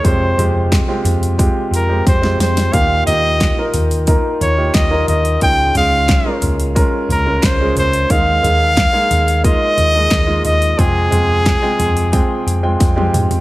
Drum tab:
HH |o-o-o-ooo-o-o-oo|o-o-o-ooo-o-o-oo|o-o-o-ooo-o-o-oo|o-o-o-ooo-o-o-oo|
CP |----x-----------|----x-------x---|----x-------x---|----x-------x---|
SD |----o-------oooo|----o-------o---|----o-------o---|----o-------o---|
T1 |----------------|----------------|----------------|----------------|
T2 |----------------|----------------|----------------|----------------|
FT |--o---o---------|--o---o---o---o-|--o---o---o---o-|--o---o---o---o-|
BD |o---o---o---o---|o---o---o---o---|o---o---o---o---|o---o---o---o---|

HH |o-o-o-ooo-o-o-oo|
CP |----x-----------|
SD |----o-------o---|
T1 |-------------o--|
T2 |--------------o-|
FT |--o---o--------o|
BD |o---o---o---o---|